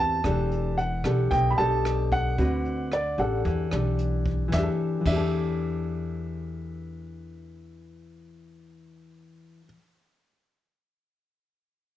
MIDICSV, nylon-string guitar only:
0, 0, Header, 1, 2, 480
1, 0, Start_track
1, 0, Key_signature, 1, "minor"
1, 0, Tempo, 535236
1, 213, Time_signature, 4, 2, 24, 8
1, 10734, End_track
2, 0, Start_track
2, 0, Title_t, "Nylon-string guitar"
2, 0, Program_c, 0, 24
2, 0, Note_on_c, 0, 52, 59
2, 0, Note_on_c, 0, 60, 63
2, 0, Note_on_c, 0, 67, 63
2, 0, Note_on_c, 0, 71, 58
2, 178, Note_off_c, 0, 60, 0
2, 180, Note_off_c, 0, 67, 0
2, 182, Note_off_c, 0, 71, 0
2, 190, Note_off_c, 0, 52, 0
2, 222, Note_on_c, 0, 52, 63
2, 222, Note_on_c, 0, 62, 60
2, 226, Note_on_c, 0, 69, 56
2, 227, Note_on_c, 0, 67, 63
2, 694, Note_off_c, 0, 62, 0
2, 696, Note_off_c, 0, 67, 0
2, 697, Note_off_c, 0, 69, 0
2, 939, Note_on_c, 0, 62, 59
2, 943, Note_on_c, 0, 67, 66
2, 946, Note_on_c, 0, 69, 68
2, 1154, Note_off_c, 0, 52, 0
2, 1172, Note_on_c, 0, 47, 56
2, 1378, Note_off_c, 0, 62, 0
2, 1379, Note_off_c, 0, 67, 0
2, 1382, Note_off_c, 0, 69, 0
2, 1415, Note_on_c, 0, 62, 61
2, 1419, Note_on_c, 0, 67, 63
2, 1420, Note_on_c, 0, 69, 68
2, 2097, Note_off_c, 0, 62, 0
2, 2097, Note_off_c, 0, 67, 0
2, 2099, Note_off_c, 0, 69, 0
2, 2110, Note_off_c, 0, 47, 0
2, 2138, Note_on_c, 0, 50, 59
2, 2139, Note_on_c, 0, 60, 61
2, 2141, Note_on_c, 0, 66, 58
2, 2146, Note_on_c, 0, 71, 67
2, 2613, Note_off_c, 0, 60, 0
2, 2615, Note_off_c, 0, 66, 0
2, 2616, Note_off_c, 0, 71, 0
2, 2855, Note_on_c, 0, 62, 57
2, 2859, Note_on_c, 0, 67, 64
2, 2867, Note_on_c, 0, 69, 64
2, 3073, Note_off_c, 0, 50, 0
2, 3092, Note_on_c, 0, 52, 58
2, 3296, Note_off_c, 0, 62, 0
2, 3300, Note_off_c, 0, 67, 0
2, 3300, Note_off_c, 0, 69, 0
2, 3333, Note_on_c, 0, 62, 60
2, 3339, Note_on_c, 0, 67, 51
2, 3345, Note_on_c, 0, 69, 64
2, 4007, Note_off_c, 0, 52, 0
2, 4016, Note_off_c, 0, 62, 0
2, 4017, Note_on_c, 0, 52, 68
2, 4019, Note_off_c, 0, 67, 0
2, 4020, Note_off_c, 0, 69, 0
2, 4073, Note_on_c, 0, 62, 64
2, 4110, Note_on_c, 0, 67, 63
2, 4152, Note_on_c, 0, 69, 65
2, 4488, Note_off_c, 0, 52, 0
2, 4492, Note_on_c, 0, 52, 57
2, 4519, Note_off_c, 0, 62, 0
2, 4546, Note_on_c, 0, 62, 65
2, 4584, Note_off_c, 0, 67, 0
2, 4588, Note_on_c, 0, 67, 59
2, 4614, Note_off_c, 0, 69, 0
2, 4628, Note_on_c, 0, 69, 64
2, 8618, Note_off_c, 0, 52, 0
2, 8672, Note_off_c, 0, 62, 0
2, 8713, Note_off_c, 0, 67, 0
2, 8754, Note_off_c, 0, 69, 0
2, 10734, End_track
0, 0, End_of_file